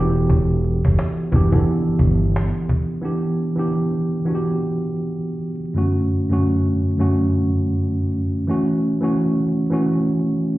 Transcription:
Already playing: analog synth bass E1, tine electric piano E3 B3 D4 F#4 G4 A4
0.30 analog synth bass E1, cajon bass
0.64 cajon slap
0.85 analog synth bass F#1, cajon bass
0.99 cajon slap
1.32 analog synth bass F#1, tine electric piano E3 B3 D4 G4, cajon bass
1.52 tine electric piano E3 B3 D4 A4, cajon bass
1.65 cajon slap
1.88 analog synth bass G1
1.99 analog synth bass G1, cajon bass
2.22 cajon slap
2.36 cajon slap
2.69 cajon bass
2.90 cajon slap
3.01 tine electric piano E3 B3 D4 G4
3.56 tine electric piano E3 B3 D4 G4
4.25 tine electric piano E3 B3 D4 F#4
4.35 tine electric piano G4
5.74 tine electric piano F#2 D3 A3 C#4 F#4
6.29 tine electric piano F#2 D3 A3 C#4 F#4
6.97 tine electric piano F#2 D3 A3 C#4 F#4
8.47 tine electric piano E3 A3 C#4 F#4
9.00 tine electric piano E3 A3 C#4 F#4
9.70 tine electric piano E3 A3 C#4 F#4

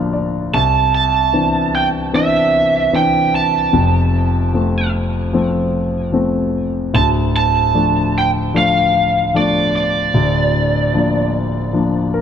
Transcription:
Already playing: grand piano D1 D2 F3 A#3 D4 F5
0.13 grand piano D5
0.54 grand piano C2, lead electric guitar A5
0.95 lead electric guitar A5
1.33 grand piano E3 C4 D4
1.75 lead electric guitar G5
2.14 grand piano E3 C4 D4, lead electric guitar E5
2.93 grand piano E3 C4 D4, lead electric guitar G5
3.36 lead electric guitar A5
3.73 grand piano F1 F2
4.53 grand piano F3 A3 C4
5.33 grand piano F3 A3 C4
6.12 grand piano F3 A3 C4
6.94 grand piano D1 D2, lead electric guitar A5
7.37 lead electric guitar A5
7.74 grand piano F3 A3 D4
8.18 lead electric guitar G5
8.54 grand piano F3 A3 D4, lead electric guitar F5
9.34 grand piano F3 A3 D4, lead electric guitar D5
9.76 lead electric guitar D5
10.14 grand piano D1 D2
10.94 grand piano F3 A#3 D4
11.73 grand piano F3 A#3 D4
12.14 grand piano A#4

